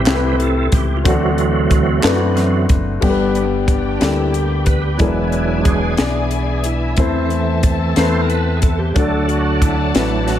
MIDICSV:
0, 0, Header, 1, 6, 480
1, 0, Start_track
1, 0, Key_signature, 1, "major"
1, 0, Tempo, 659341
1, 763, Time_signature, 6, 3, 24, 8
1, 7566, End_track
2, 0, Start_track
2, 0, Title_t, "String section"
2, 0, Program_c, 0, 48
2, 2195, Note_on_c, 0, 74, 54
2, 2198, Note_on_c, 0, 67, 66
2, 2198, Note_on_c, 0, 71, 66
2, 2199, Note_on_c, 0, 79, 72
2, 3623, Note_off_c, 0, 74, 0
2, 3624, Note_off_c, 0, 67, 0
2, 3625, Note_off_c, 0, 79, 0
2, 3645, Note_on_c, 0, 74, 66
2, 3645, Note_on_c, 0, 76, 59
2, 3646, Note_on_c, 0, 80, 82
2, 5051, Note_off_c, 0, 71, 0
2, 5069, Note_off_c, 0, 74, 0
2, 5069, Note_off_c, 0, 80, 0
2, 5086, Note_on_c, 0, 69, 69
2, 5092, Note_on_c, 0, 81, 82
2, 5095, Note_on_c, 0, 60, 69
2, 6496, Note_off_c, 0, 76, 0
2, 6511, Note_off_c, 0, 69, 0
2, 6514, Note_off_c, 0, 81, 0
2, 6515, Note_off_c, 0, 60, 0
2, 6523, Note_on_c, 0, 78, 70
2, 6525, Note_on_c, 0, 74, 74
2, 6525, Note_on_c, 0, 81, 82
2, 6527, Note_on_c, 0, 69, 78
2, 7566, Note_off_c, 0, 69, 0
2, 7566, Note_off_c, 0, 74, 0
2, 7566, Note_off_c, 0, 78, 0
2, 7566, Note_off_c, 0, 81, 0
2, 7566, End_track
3, 0, Start_track
3, 0, Title_t, "Upright piano"
3, 0, Program_c, 1, 0
3, 0, Control_c, 1, 64, 127
3, 0, Note_on_c, 1, 45, 59
3, 0, Note_on_c, 1, 57, 75
3, 0, Note_on_c, 1, 60, 69
3, 0, Note_on_c, 1, 64, 69
3, 0, Note_on_c, 1, 67, 67
3, 0, Note_on_c, 1, 69, 90
3, 42, Note_off_c, 1, 57, 0
3, 42, Note_on_c, 1, 57, 67
3, 45, Note_off_c, 1, 60, 0
3, 45, Note_on_c, 1, 60, 64
3, 47, Note_off_c, 1, 64, 0
3, 47, Note_on_c, 1, 64, 69
3, 53, Note_off_c, 1, 67, 0
3, 53, Note_on_c, 1, 67, 62
3, 58, Note_off_c, 1, 69, 0
3, 58, Note_on_c, 1, 69, 54
3, 99, Note_off_c, 1, 69, 0
3, 102, Note_on_c, 1, 71, 72
3, 667, Note_off_c, 1, 57, 0
3, 669, Note_off_c, 1, 60, 0
3, 670, Note_off_c, 1, 64, 0
3, 673, Note_off_c, 1, 67, 0
3, 697, Note_off_c, 1, 71, 0
3, 757, Note_on_c, 1, 57, 71
3, 759, Note_on_c, 1, 60, 74
3, 763, Note_on_c, 1, 50, 59
3, 765, Note_on_c, 1, 62, 73
3, 770, Note_on_c, 1, 66, 75
3, 773, Control_c, 1, 64, 0
3, 773, Note_on_c, 1, 69, 90
3, 776, Note_off_c, 1, 45, 0
3, 883, Control_c, 1, 64, 127
3, 1384, Note_off_c, 1, 57, 0
3, 1385, Note_off_c, 1, 60, 0
3, 1388, Note_off_c, 1, 62, 0
3, 1391, Note_off_c, 1, 66, 0
3, 1392, Note_off_c, 1, 69, 0
3, 1452, Note_off_c, 1, 50, 0
3, 1474, Note_on_c, 1, 57, 82
3, 1474, Note_on_c, 1, 60, 72
3, 1482, Note_on_c, 1, 62, 74
3, 1485, Note_on_c, 1, 64, 54
3, 1488, Note_on_c, 1, 71, 78
3, 1531, Note_off_c, 1, 64, 0
3, 1531, Note_on_c, 1, 66, 63
3, 2102, Note_off_c, 1, 57, 0
3, 2102, Note_off_c, 1, 60, 0
3, 2106, Note_off_c, 1, 62, 0
3, 2109, Note_off_c, 1, 71, 0
3, 2131, Note_off_c, 1, 66, 0
3, 2187, Note_on_c, 1, 55, 65
3, 2192, Note_on_c, 1, 59, 70
3, 2195, Note_on_c, 1, 62, 65
3, 2200, Note_on_c, 1, 43, 61
3, 2201, Note_on_c, 1, 67, 67
3, 2202, Note_on_c, 1, 69, 66
3, 2210, Control_c, 1, 64, 0
3, 2249, Note_off_c, 1, 69, 0
3, 2254, Note_on_c, 1, 71, 84
3, 2328, Control_c, 1, 64, 127
3, 2818, Note_off_c, 1, 55, 0
3, 2821, Note_off_c, 1, 59, 0
3, 2823, Note_off_c, 1, 62, 0
3, 2826, Note_off_c, 1, 67, 0
3, 2852, Note_off_c, 1, 71, 0
3, 2890, Note_off_c, 1, 43, 0
3, 2908, Note_on_c, 1, 55, 53
3, 2912, Note_on_c, 1, 58, 38
3, 2918, Note_on_c, 1, 62, 51
3, 2920, Note_on_c, 1, 67, 46
3, 2922, Note_on_c, 1, 69, 62
3, 2960, Note_on_c, 1, 59, 51
3, 2964, Note_off_c, 1, 58, 0
3, 3539, Note_off_c, 1, 55, 0
3, 3544, Note_off_c, 1, 62, 0
3, 3545, Note_off_c, 1, 67, 0
3, 3546, Note_off_c, 1, 69, 0
3, 3565, Note_off_c, 1, 59, 0
3, 3631, Note_on_c, 1, 59, 59
3, 3636, Note_on_c, 1, 52, 54
3, 3636, Note_on_c, 1, 62, 62
3, 3640, Note_on_c, 1, 64, 63
3, 3644, Note_on_c, 1, 68, 60
3, 3649, Note_on_c, 1, 70, 56
3, 3650, Control_c, 1, 64, 0
3, 3692, Note_off_c, 1, 70, 0
3, 3694, Note_on_c, 1, 71, 67
3, 3761, Control_c, 1, 64, 127
3, 4261, Note_off_c, 1, 59, 0
3, 4263, Note_off_c, 1, 62, 0
3, 4266, Note_off_c, 1, 64, 0
3, 4267, Note_off_c, 1, 68, 0
3, 4293, Note_off_c, 1, 71, 0
3, 4329, Note_off_c, 1, 52, 0
3, 4344, Note_on_c, 1, 59, 51
3, 4352, Note_on_c, 1, 62, 57
3, 4355, Note_on_c, 1, 64, 52
3, 4356, Note_on_c, 1, 68, 58
3, 4363, Note_on_c, 1, 74, 60
3, 4978, Note_off_c, 1, 59, 0
3, 4982, Note_off_c, 1, 62, 0
3, 4983, Note_off_c, 1, 64, 0
3, 4984, Note_off_c, 1, 68, 0
3, 4987, Note_off_c, 1, 74, 0
3, 5077, Note_on_c, 1, 57, 65
3, 5080, Note_on_c, 1, 60, 62
3, 5083, Note_on_c, 1, 64, 66
3, 5086, Note_on_c, 1, 52, 54
3, 5089, Control_c, 1, 64, 0
3, 5089, Note_on_c, 1, 69, 60
3, 5092, Note_on_c, 1, 72, 68
3, 5232, Control_c, 1, 64, 127
3, 5705, Note_off_c, 1, 57, 0
3, 5707, Note_off_c, 1, 60, 0
3, 5708, Note_off_c, 1, 64, 0
3, 5711, Note_off_c, 1, 69, 0
3, 5713, Note_off_c, 1, 72, 0
3, 5775, Note_off_c, 1, 52, 0
3, 5795, Note_on_c, 1, 57, 58
3, 5798, Note_on_c, 1, 59, 47
3, 5805, Note_on_c, 1, 64, 56
3, 5808, Note_on_c, 1, 69, 60
3, 5810, Note_on_c, 1, 71, 74
3, 5847, Note_off_c, 1, 59, 0
3, 5847, Note_on_c, 1, 60, 57
3, 6424, Note_off_c, 1, 57, 0
3, 6429, Note_off_c, 1, 64, 0
3, 6431, Note_off_c, 1, 69, 0
3, 6432, Note_off_c, 1, 71, 0
3, 6451, Note_off_c, 1, 60, 0
3, 6519, Note_on_c, 1, 57, 63
3, 6525, Note_on_c, 1, 62, 59
3, 6525, Note_on_c, 1, 66, 59
3, 6528, Note_on_c, 1, 50, 51
3, 6531, Control_c, 1, 64, 0
3, 6532, Note_on_c, 1, 69, 55
3, 6535, Note_on_c, 1, 74, 69
3, 6671, Control_c, 1, 64, 127
3, 7147, Note_off_c, 1, 57, 0
3, 7150, Note_off_c, 1, 62, 0
3, 7150, Note_off_c, 1, 66, 0
3, 7153, Note_off_c, 1, 69, 0
3, 7155, Note_off_c, 1, 74, 0
3, 7217, Note_off_c, 1, 50, 0
3, 7237, Note_on_c, 1, 57, 52
3, 7240, Note_on_c, 1, 62, 52
3, 7242, Note_on_c, 1, 66, 50
3, 7250, Note_on_c, 1, 69, 50
3, 7256, Note_on_c, 1, 71, 64
3, 7566, Note_off_c, 1, 57, 0
3, 7566, Note_off_c, 1, 62, 0
3, 7566, Note_off_c, 1, 66, 0
3, 7566, Note_off_c, 1, 69, 0
3, 7566, Note_off_c, 1, 71, 0
3, 7566, End_track
4, 0, Start_track
4, 0, Title_t, "Tonewheel organ"
4, 0, Program_c, 2, 16
4, 0, Note_on_c, 2, 60, 59
4, 0, Note_on_c, 2, 64, 63
4, 0, Note_on_c, 2, 67, 84
4, 36, Note_on_c, 2, 48, 45
4, 41, Note_on_c, 2, 55, 41
4, 41, Note_on_c, 2, 71, 48
4, 255, Note_off_c, 2, 48, 0
4, 258, Note_off_c, 2, 55, 0
4, 259, Note_off_c, 2, 71, 0
4, 283, Note_on_c, 2, 69, 79
4, 299, Note_off_c, 2, 67, 0
4, 491, Note_off_c, 2, 60, 0
4, 491, Note_off_c, 2, 64, 0
4, 526, Note_on_c, 2, 67, 85
4, 530, Note_off_c, 2, 69, 0
4, 706, Note_on_c, 2, 65, 50
4, 719, Note_off_c, 2, 67, 0
4, 757, Note_on_c, 2, 52, 58
4, 760, Note_off_c, 2, 65, 0
4, 762, Note_on_c, 2, 54, 45
4, 767, Note_on_c, 2, 57, 52
4, 767, Note_on_c, 2, 60, 60
4, 780, Note_on_c, 2, 66, 80
4, 1449, Note_off_c, 2, 52, 0
4, 1452, Note_off_c, 2, 54, 0
4, 1455, Note_off_c, 2, 60, 0
4, 1714, Note_on_c, 2, 52, 49
4, 1715, Note_on_c, 2, 54, 41
4, 1717, Note_on_c, 2, 60, 47
4, 1933, Note_off_c, 2, 52, 0
4, 1933, Note_off_c, 2, 57, 0
4, 1934, Note_off_c, 2, 54, 0
4, 1935, Note_off_c, 2, 60, 0
4, 1940, Note_off_c, 2, 66, 0
4, 2193, Note_on_c, 2, 55, 46
4, 2199, Note_on_c, 2, 59, 41
4, 2202, Note_on_c, 2, 62, 51
4, 2516, Note_off_c, 2, 55, 0
4, 2519, Note_off_c, 2, 59, 0
4, 2520, Note_off_c, 2, 62, 0
4, 2675, Note_on_c, 2, 62, 70
4, 2917, Note_on_c, 2, 64, 76
4, 2924, Note_off_c, 2, 62, 0
4, 3155, Note_on_c, 2, 67, 70
4, 3165, Note_off_c, 2, 64, 0
4, 3380, Note_off_c, 2, 67, 0
4, 3395, Note_on_c, 2, 71, 80
4, 3508, Note_on_c, 2, 67, 71
4, 3521, Note_off_c, 2, 71, 0
4, 3621, Note_on_c, 2, 54, 45
4, 3626, Note_on_c, 2, 56, 41
4, 3627, Note_on_c, 2, 64, 85
4, 3630, Note_on_c, 2, 62, 54
4, 3637, Note_off_c, 2, 67, 0
4, 4085, Note_off_c, 2, 64, 0
4, 4110, Note_on_c, 2, 68, 77
4, 4322, Note_off_c, 2, 54, 0
4, 4324, Note_off_c, 2, 56, 0
4, 4326, Note_off_c, 2, 62, 0
4, 4355, Note_off_c, 2, 68, 0
4, 4364, Note_on_c, 2, 68, 76
4, 4845, Note_on_c, 2, 64, 75
4, 4857, Note_off_c, 2, 68, 0
4, 5066, Note_off_c, 2, 64, 0
4, 5074, Note_on_c, 2, 52, 53
4, 5079, Note_on_c, 2, 57, 47
4, 5080, Note_on_c, 2, 60, 68
4, 5309, Note_off_c, 2, 60, 0
4, 5784, Note_off_c, 2, 52, 0
4, 5790, Note_off_c, 2, 57, 0
4, 5793, Note_on_c, 2, 52, 43
4, 5797, Note_on_c, 2, 60, 45
4, 5799, Note_on_c, 2, 57, 41
4, 5807, Note_on_c, 2, 72, 93
4, 5978, Note_on_c, 2, 70, 68
4, 5980, Note_off_c, 2, 72, 0
4, 6013, Note_off_c, 2, 52, 0
4, 6015, Note_off_c, 2, 60, 0
4, 6016, Note_off_c, 2, 57, 0
4, 6036, Note_off_c, 2, 70, 0
4, 6039, Note_on_c, 2, 71, 78
4, 6239, Note_on_c, 2, 68, 66
4, 6257, Note_off_c, 2, 71, 0
4, 6276, Note_off_c, 2, 68, 0
4, 6282, Note_on_c, 2, 69, 86
4, 6396, Note_on_c, 2, 67, 83
4, 6406, Note_off_c, 2, 69, 0
4, 6510, Note_on_c, 2, 54, 50
4, 6518, Note_on_c, 2, 57, 44
4, 6519, Note_on_c, 2, 69, 89
4, 6521, Note_on_c, 2, 62, 53
4, 6523, Note_off_c, 2, 67, 0
4, 6751, Note_on_c, 2, 66, 74
4, 6768, Note_off_c, 2, 69, 0
4, 6998, Note_on_c, 2, 64, 74
4, 7004, Note_off_c, 2, 66, 0
4, 7107, Note_off_c, 2, 62, 0
4, 7115, Note_on_c, 2, 62, 66
4, 7124, Note_off_c, 2, 64, 0
4, 7237, Note_on_c, 2, 64, 79
4, 7243, Note_off_c, 2, 62, 0
4, 7472, Note_on_c, 2, 66, 67
4, 7488, Note_off_c, 2, 64, 0
4, 7566, Note_off_c, 2, 54, 0
4, 7566, Note_off_c, 2, 57, 0
4, 7566, Note_off_c, 2, 66, 0
4, 7566, End_track
5, 0, Start_track
5, 0, Title_t, "Fingered electric bass"
5, 0, Program_c, 3, 33
5, 49, Note_on_c, 3, 36, 98
5, 496, Note_off_c, 3, 36, 0
5, 529, Note_on_c, 3, 37, 87
5, 747, Note_off_c, 3, 37, 0
5, 770, Note_on_c, 3, 38, 93
5, 1456, Note_off_c, 3, 38, 0
5, 1485, Note_on_c, 3, 42, 92
5, 1933, Note_off_c, 3, 42, 0
5, 1966, Note_on_c, 3, 30, 86
5, 2184, Note_off_c, 3, 30, 0
5, 2203, Note_on_c, 3, 31, 78
5, 2892, Note_off_c, 3, 31, 0
5, 2923, Note_on_c, 3, 38, 80
5, 3612, Note_off_c, 3, 38, 0
5, 3639, Note_on_c, 3, 28, 87
5, 4331, Note_off_c, 3, 28, 0
5, 4362, Note_on_c, 3, 35, 73
5, 5053, Note_off_c, 3, 35, 0
5, 5080, Note_on_c, 3, 40, 92
5, 5772, Note_off_c, 3, 40, 0
5, 5803, Note_on_c, 3, 40, 93
5, 6494, Note_off_c, 3, 40, 0
5, 6521, Note_on_c, 3, 38, 89
5, 7214, Note_off_c, 3, 38, 0
5, 7244, Note_on_c, 3, 33, 95
5, 7566, Note_off_c, 3, 33, 0
5, 7566, End_track
6, 0, Start_track
6, 0, Title_t, "Drums"
6, 44, Note_on_c, 9, 42, 73
6, 47, Note_on_c, 9, 39, 96
6, 52, Note_on_c, 9, 38, 102
6, 117, Note_off_c, 9, 42, 0
6, 119, Note_off_c, 9, 39, 0
6, 124, Note_off_c, 9, 38, 0
6, 290, Note_on_c, 9, 42, 50
6, 363, Note_off_c, 9, 42, 0
6, 524, Note_on_c, 9, 42, 58
6, 528, Note_on_c, 9, 36, 102
6, 596, Note_off_c, 9, 42, 0
6, 600, Note_off_c, 9, 36, 0
6, 768, Note_on_c, 9, 36, 112
6, 769, Note_on_c, 9, 42, 87
6, 840, Note_off_c, 9, 36, 0
6, 842, Note_off_c, 9, 42, 0
6, 1005, Note_on_c, 9, 42, 40
6, 1077, Note_off_c, 9, 42, 0
6, 1242, Note_on_c, 9, 42, 54
6, 1243, Note_on_c, 9, 36, 84
6, 1315, Note_off_c, 9, 42, 0
6, 1316, Note_off_c, 9, 36, 0
6, 1479, Note_on_c, 9, 42, 68
6, 1482, Note_on_c, 9, 39, 102
6, 1486, Note_on_c, 9, 38, 107
6, 1552, Note_off_c, 9, 42, 0
6, 1555, Note_off_c, 9, 39, 0
6, 1559, Note_off_c, 9, 38, 0
6, 1724, Note_on_c, 9, 42, 50
6, 1727, Note_on_c, 9, 38, 38
6, 1796, Note_off_c, 9, 42, 0
6, 1799, Note_off_c, 9, 38, 0
6, 1960, Note_on_c, 9, 42, 53
6, 1963, Note_on_c, 9, 36, 97
6, 2033, Note_off_c, 9, 42, 0
6, 2036, Note_off_c, 9, 36, 0
6, 2199, Note_on_c, 9, 49, 73
6, 2202, Note_on_c, 9, 36, 94
6, 2272, Note_off_c, 9, 49, 0
6, 2274, Note_off_c, 9, 36, 0
6, 2440, Note_on_c, 9, 42, 43
6, 2513, Note_off_c, 9, 42, 0
6, 2678, Note_on_c, 9, 36, 78
6, 2679, Note_on_c, 9, 42, 59
6, 2751, Note_off_c, 9, 36, 0
6, 2751, Note_off_c, 9, 42, 0
6, 2919, Note_on_c, 9, 42, 60
6, 2926, Note_on_c, 9, 38, 83
6, 2992, Note_off_c, 9, 42, 0
6, 2999, Note_off_c, 9, 38, 0
6, 3160, Note_on_c, 9, 42, 44
6, 3233, Note_off_c, 9, 42, 0
6, 3392, Note_on_c, 9, 42, 69
6, 3397, Note_on_c, 9, 36, 80
6, 3465, Note_off_c, 9, 42, 0
6, 3470, Note_off_c, 9, 36, 0
6, 3634, Note_on_c, 9, 42, 65
6, 3638, Note_on_c, 9, 36, 96
6, 3707, Note_off_c, 9, 42, 0
6, 3711, Note_off_c, 9, 36, 0
6, 3875, Note_on_c, 9, 42, 41
6, 3948, Note_off_c, 9, 42, 0
6, 4114, Note_on_c, 9, 42, 67
6, 4116, Note_on_c, 9, 36, 76
6, 4187, Note_off_c, 9, 42, 0
6, 4189, Note_off_c, 9, 36, 0
6, 4350, Note_on_c, 9, 42, 64
6, 4357, Note_on_c, 9, 38, 85
6, 4422, Note_off_c, 9, 42, 0
6, 4430, Note_off_c, 9, 38, 0
6, 4592, Note_on_c, 9, 42, 46
6, 4665, Note_off_c, 9, 42, 0
6, 4832, Note_on_c, 9, 42, 66
6, 4905, Note_off_c, 9, 42, 0
6, 5071, Note_on_c, 9, 42, 68
6, 5078, Note_on_c, 9, 36, 98
6, 5144, Note_off_c, 9, 42, 0
6, 5151, Note_off_c, 9, 36, 0
6, 5317, Note_on_c, 9, 42, 39
6, 5390, Note_off_c, 9, 42, 0
6, 5555, Note_on_c, 9, 42, 63
6, 5558, Note_on_c, 9, 36, 87
6, 5627, Note_off_c, 9, 42, 0
6, 5631, Note_off_c, 9, 36, 0
6, 5796, Note_on_c, 9, 42, 71
6, 5803, Note_on_c, 9, 38, 93
6, 5869, Note_off_c, 9, 42, 0
6, 5876, Note_off_c, 9, 38, 0
6, 6040, Note_on_c, 9, 42, 43
6, 6113, Note_off_c, 9, 42, 0
6, 6275, Note_on_c, 9, 42, 66
6, 6281, Note_on_c, 9, 36, 85
6, 6347, Note_off_c, 9, 42, 0
6, 6354, Note_off_c, 9, 36, 0
6, 6521, Note_on_c, 9, 42, 72
6, 6522, Note_on_c, 9, 36, 93
6, 6593, Note_off_c, 9, 42, 0
6, 6595, Note_off_c, 9, 36, 0
6, 6762, Note_on_c, 9, 42, 45
6, 6835, Note_off_c, 9, 42, 0
6, 7001, Note_on_c, 9, 36, 78
6, 7004, Note_on_c, 9, 42, 69
6, 7074, Note_off_c, 9, 36, 0
6, 7076, Note_off_c, 9, 42, 0
6, 7241, Note_on_c, 9, 42, 69
6, 7248, Note_on_c, 9, 38, 90
6, 7314, Note_off_c, 9, 42, 0
6, 7321, Note_off_c, 9, 38, 0
6, 7481, Note_on_c, 9, 42, 50
6, 7484, Note_on_c, 9, 38, 29
6, 7554, Note_off_c, 9, 42, 0
6, 7557, Note_off_c, 9, 38, 0
6, 7566, End_track
0, 0, End_of_file